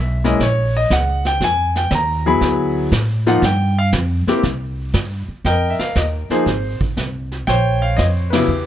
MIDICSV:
0, 0, Header, 1, 5, 480
1, 0, Start_track
1, 0, Tempo, 505902
1, 1332, Time_signature, 4, 2, 24, 8
1, 8219, End_track
2, 0, Start_track
2, 0, Title_t, "Grand piano"
2, 0, Program_c, 0, 0
2, 0, Note_on_c, 0, 76, 80
2, 200, Note_off_c, 0, 76, 0
2, 230, Note_on_c, 0, 56, 60
2, 231, Note_on_c, 0, 58, 62
2, 232, Note_on_c, 0, 61, 63
2, 234, Note_on_c, 0, 64, 69
2, 243, Note_on_c, 0, 75, 80
2, 363, Note_off_c, 0, 56, 0
2, 364, Note_off_c, 0, 58, 0
2, 364, Note_off_c, 0, 61, 0
2, 365, Note_off_c, 0, 64, 0
2, 380, Note_off_c, 0, 75, 0
2, 408, Note_on_c, 0, 73, 78
2, 708, Note_off_c, 0, 73, 0
2, 727, Note_on_c, 0, 75, 88
2, 862, Note_off_c, 0, 75, 0
2, 878, Note_on_c, 0, 78, 86
2, 1182, Note_off_c, 0, 78, 0
2, 1202, Note_on_c, 0, 79, 98
2, 1339, Note_off_c, 0, 79, 0
2, 1369, Note_on_c, 0, 80, 106
2, 1667, Note_off_c, 0, 80, 0
2, 1680, Note_on_c, 0, 79, 85
2, 1818, Note_off_c, 0, 79, 0
2, 1847, Note_on_c, 0, 82, 81
2, 2145, Note_on_c, 0, 54, 77
2, 2146, Note_off_c, 0, 82, 0
2, 2146, Note_on_c, 0, 59, 65
2, 2149, Note_on_c, 0, 64, 65
2, 2152, Note_on_c, 0, 68, 84
2, 2162, Note_on_c, 0, 83, 91
2, 2596, Note_off_c, 0, 83, 0
2, 2743, Note_off_c, 0, 54, 0
2, 2744, Note_off_c, 0, 59, 0
2, 2745, Note_off_c, 0, 64, 0
2, 2747, Note_off_c, 0, 68, 0
2, 3097, Note_on_c, 0, 53, 74
2, 3099, Note_on_c, 0, 58, 69
2, 3100, Note_on_c, 0, 63, 69
2, 3101, Note_on_c, 0, 65, 77
2, 3115, Note_on_c, 0, 78, 97
2, 3235, Note_off_c, 0, 53, 0
2, 3235, Note_off_c, 0, 58, 0
2, 3236, Note_off_c, 0, 63, 0
2, 3237, Note_off_c, 0, 65, 0
2, 3255, Note_off_c, 0, 78, 0
2, 3275, Note_on_c, 0, 79, 100
2, 3579, Note_off_c, 0, 79, 0
2, 3591, Note_on_c, 0, 77, 90
2, 3679, Note_off_c, 0, 77, 0
2, 4059, Note_on_c, 0, 58, 70
2, 4060, Note_on_c, 0, 60, 64
2, 4063, Note_on_c, 0, 64, 60
2, 4066, Note_on_c, 0, 67, 80
2, 4195, Note_off_c, 0, 58, 0
2, 4196, Note_off_c, 0, 60, 0
2, 4197, Note_off_c, 0, 64, 0
2, 4199, Note_off_c, 0, 67, 0
2, 5180, Note_on_c, 0, 79, 99
2, 5181, Note_on_c, 0, 75, 65
2, 5183, Note_on_c, 0, 70, 68
2, 5409, Note_on_c, 0, 76, 66
2, 5426, Note_off_c, 0, 79, 0
2, 5493, Note_off_c, 0, 76, 0
2, 5498, Note_on_c, 0, 77, 70
2, 5643, Note_off_c, 0, 75, 0
2, 5655, Note_off_c, 0, 77, 0
2, 5658, Note_on_c, 0, 75, 74
2, 5730, Note_off_c, 0, 75, 0
2, 5985, Note_on_c, 0, 72, 70
2, 5986, Note_on_c, 0, 53, 59
2, 5988, Note_on_c, 0, 58, 55
2, 5993, Note_on_c, 0, 63, 55
2, 5993, Note_on_c, 0, 68, 77
2, 6098, Note_off_c, 0, 70, 0
2, 6119, Note_off_c, 0, 53, 0
2, 6120, Note_off_c, 0, 58, 0
2, 6122, Note_off_c, 0, 63, 0
2, 6122, Note_off_c, 0, 68, 0
2, 6428, Note_off_c, 0, 72, 0
2, 7090, Note_on_c, 0, 79, 105
2, 7103, Note_on_c, 0, 72, 69
2, 7106, Note_on_c, 0, 73, 73
2, 7419, Note_on_c, 0, 77, 76
2, 7427, Note_off_c, 0, 79, 0
2, 7558, Note_on_c, 0, 75, 81
2, 7577, Note_off_c, 0, 77, 0
2, 7633, Note_off_c, 0, 75, 0
2, 7876, Note_on_c, 0, 71, 64
2, 7901, Note_on_c, 0, 49, 69
2, 7902, Note_on_c, 0, 54, 60
2, 7906, Note_on_c, 0, 59, 64
2, 7907, Note_on_c, 0, 64, 77
2, 7913, Note_on_c, 0, 67, 49
2, 8021, Note_off_c, 0, 72, 0
2, 8022, Note_off_c, 0, 73, 0
2, 8038, Note_off_c, 0, 49, 0
2, 8039, Note_off_c, 0, 54, 0
2, 8041, Note_off_c, 0, 59, 0
2, 8041, Note_off_c, 0, 64, 0
2, 8219, Note_off_c, 0, 67, 0
2, 8219, Note_off_c, 0, 71, 0
2, 8219, End_track
3, 0, Start_track
3, 0, Title_t, "Upright bass"
3, 0, Program_c, 1, 32
3, 0, Note_on_c, 1, 35, 95
3, 362, Note_off_c, 1, 35, 0
3, 377, Note_on_c, 1, 34, 74
3, 840, Note_off_c, 1, 34, 0
3, 858, Note_on_c, 1, 37, 82
3, 1320, Note_off_c, 1, 37, 0
3, 1335, Note_on_c, 1, 41, 82
3, 1798, Note_off_c, 1, 41, 0
3, 1810, Note_on_c, 1, 39, 104
3, 2275, Note_off_c, 1, 39, 0
3, 2289, Note_on_c, 1, 38, 83
3, 2754, Note_off_c, 1, 38, 0
3, 2767, Note_on_c, 1, 45, 92
3, 3234, Note_off_c, 1, 45, 0
3, 3245, Note_on_c, 1, 43, 96
3, 3712, Note_off_c, 1, 43, 0
3, 3725, Note_on_c, 1, 41, 98
3, 4030, Note_off_c, 1, 41, 0
3, 4204, Note_on_c, 1, 36, 86
3, 4672, Note_off_c, 1, 36, 0
3, 4684, Note_on_c, 1, 43, 87
3, 4990, Note_off_c, 1, 43, 0
3, 5166, Note_on_c, 1, 41, 79
3, 5471, Note_off_c, 1, 41, 0
3, 5652, Note_on_c, 1, 39, 91
3, 5954, Note_off_c, 1, 39, 0
3, 6129, Note_on_c, 1, 32, 74
3, 6433, Note_off_c, 1, 32, 0
3, 6610, Note_on_c, 1, 36, 75
3, 7076, Note_off_c, 1, 36, 0
3, 7094, Note_on_c, 1, 34, 81
3, 7558, Note_off_c, 1, 34, 0
3, 7571, Note_on_c, 1, 41, 82
3, 8035, Note_off_c, 1, 41, 0
3, 8041, Note_on_c, 1, 40, 78
3, 8219, Note_off_c, 1, 40, 0
3, 8219, End_track
4, 0, Start_track
4, 0, Title_t, "Muted upright bass strokes"
4, 4044, Note_on_c, 9, 29, 42
4, 4139, Note_off_c, 9, 29, 0
4, 5012, Note_on_c, 9, 29, 45
4, 5107, Note_off_c, 9, 29, 0
4, 5496, Note_on_c, 9, 29, 37
4, 5591, Note_off_c, 9, 29, 0
4, 5973, Note_on_c, 9, 29, 38
4, 6067, Note_off_c, 9, 29, 0
4, 6456, Note_on_c, 9, 29, 35
4, 6551, Note_off_c, 9, 29, 0
4, 8219, End_track
5, 0, Start_track
5, 0, Title_t, "Drums"
5, 231, Note_on_c, 9, 38, 45
5, 326, Note_off_c, 9, 38, 0
5, 379, Note_on_c, 9, 36, 23
5, 381, Note_on_c, 9, 25, 55
5, 381, Note_on_c, 9, 38, 53
5, 474, Note_off_c, 9, 36, 0
5, 476, Note_off_c, 9, 38, 0
5, 858, Note_on_c, 9, 36, 22
5, 858, Note_on_c, 9, 44, 49
5, 862, Note_on_c, 9, 38, 67
5, 952, Note_off_c, 9, 36, 0
5, 953, Note_off_c, 9, 44, 0
5, 956, Note_off_c, 9, 38, 0
5, 1184, Note_on_c, 9, 38, 39
5, 1279, Note_off_c, 9, 38, 0
5, 1336, Note_on_c, 9, 36, 27
5, 1339, Note_off_c, 9, 25, 0
5, 1339, Note_on_c, 9, 25, 51
5, 1339, Note_on_c, 9, 38, 52
5, 1431, Note_off_c, 9, 36, 0
5, 1434, Note_off_c, 9, 38, 0
5, 1665, Note_on_c, 9, 38, 45
5, 1759, Note_off_c, 9, 38, 0
5, 1807, Note_on_c, 9, 44, 60
5, 1811, Note_on_c, 9, 38, 65
5, 1812, Note_on_c, 9, 36, 22
5, 1902, Note_off_c, 9, 44, 0
5, 1906, Note_off_c, 9, 38, 0
5, 1907, Note_off_c, 9, 36, 0
5, 2290, Note_on_c, 9, 36, 23
5, 2291, Note_off_c, 9, 25, 0
5, 2291, Note_on_c, 9, 25, 59
5, 2291, Note_on_c, 9, 38, 48
5, 2385, Note_off_c, 9, 36, 0
5, 2386, Note_off_c, 9, 38, 0
5, 2770, Note_on_c, 9, 44, 65
5, 2771, Note_on_c, 9, 36, 24
5, 2774, Note_on_c, 9, 38, 66
5, 2865, Note_off_c, 9, 44, 0
5, 2866, Note_off_c, 9, 36, 0
5, 2869, Note_off_c, 9, 38, 0
5, 3098, Note_on_c, 9, 38, 40
5, 3193, Note_off_c, 9, 38, 0
5, 3249, Note_on_c, 9, 36, 25
5, 3251, Note_off_c, 9, 25, 0
5, 3251, Note_on_c, 9, 25, 51
5, 3251, Note_on_c, 9, 38, 53
5, 3344, Note_off_c, 9, 36, 0
5, 3345, Note_off_c, 9, 38, 0
5, 3723, Note_on_c, 9, 44, 70
5, 3727, Note_on_c, 9, 38, 73
5, 3728, Note_on_c, 9, 36, 21
5, 3818, Note_off_c, 9, 44, 0
5, 3822, Note_off_c, 9, 38, 0
5, 3823, Note_off_c, 9, 36, 0
5, 4055, Note_on_c, 9, 38, 46
5, 4150, Note_off_c, 9, 38, 0
5, 4206, Note_off_c, 9, 25, 0
5, 4206, Note_on_c, 9, 25, 58
5, 4206, Note_on_c, 9, 38, 53
5, 4208, Note_on_c, 9, 36, 29
5, 4301, Note_off_c, 9, 38, 0
5, 4303, Note_off_c, 9, 36, 0
5, 4682, Note_on_c, 9, 44, 60
5, 4686, Note_on_c, 9, 38, 64
5, 4688, Note_on_c, 9, 36, 19
5, 4777, Note_off_c, 9, 44, 0
5, 4781, Note_off_c, 9, 38, 0
5, 4783, Note_off_c, 9, 36, 0
5, 5170, Note_on_c, 9, 36, 23
5, 5172, Note_off_c, 9, 25, 0
5, 5172, Note_on_c, 9, 25, 53
5, 5172, Note_on_c, 9, 38, 45
5, 5265, Note_off_c, 9, 36, 0
5, 5267, Note_off_c, 9, 38, 0
5, 5497, Note_on_c, 9, 38, 50
5, 5592, Note_off_c, 9, 38, 0
5, 5650, Note_on_c, 9, 44, 50
5, 5652, Note_on_c, 9, 36, 24
5, 5654, Note_on_c, 9, 38, 58
5, 5745, Note_off_c, 9, 44, 0
5, 5747, Note_off_c, 9, 36, 0
5, 5749, Note_off_c, 9, 38, 0
5, 5978, Note_on_c, 9, 38, 36
5, 6073, Note_off_c, 9, 38, 0
5, 6132, Note_on_c, 9, 36, 20
5, 6136, Note_off_c, 9, 25, 0
5, 6136, Note_on_c, 9, 25, 46
5, 6136, Note_on_c, 9, 38, 50
5, 6227, Note_off_c, 9, 36, 0
5, 6231, Note_off_c, 9, 38, 0
5, 6459, Note_on_c, 9, 36, 51
5, 6554, Note_off_c, 9, 36, 0
5, 6612, Note_on_c, 9, 36, 18
5, 6612, Note_on_c, 9, 44, 52
5, 6616, Note_on_c, 9, 38, 53
5, 6707, Note_off_c, 9, 36, 0
5, 6707, Note_off_c, 9, 44, 0
5, 6711, Note_off_c, 9, 38, 0
5, 6942, Note_on_c, 9, 38, 35
5, 7036, Note_off_c, 9, 38, 0
5, 7094, Note_on_c, 9, 36, 19
5, 7096, Note_off_c, 9, 25, 0
5, 7096, Note_on_c, 9, 25, 50
5, 7096, Note_on_c, 9, 38, 44
5, 7188, Note_off_c, 9, 36, 0
5, 7191, Note_off_c, 9, 38, 0
5, 7572, Note_on_c, 9, 44, 51
5, 7573, Note_on_c, 9, 36, 23
5, 7576, Note_on_c, 9, 38, 64
5, 7667, Note_off_c, 9, 36, 0
5, 7667, Note_off_c, 9, 44, 0
5, 7671, Note_off_c, 9, 38, 0
5, 7899, Note_on_c, 9, 51, 62
5, 7902, Note_on_c, 9, 38, 76
5, 7994, Note_off_c, 9, 51, 0
5, 7997, Note_off_c, 9, 38, 0
5, 8055, Note_off_c, 9, 25, 0
5, 8055, Note_on_c, 9, 25, 50
5, 8219, Note_off_c, 9, 25, 0
5, 8219, End_track
0, 0, End_of_file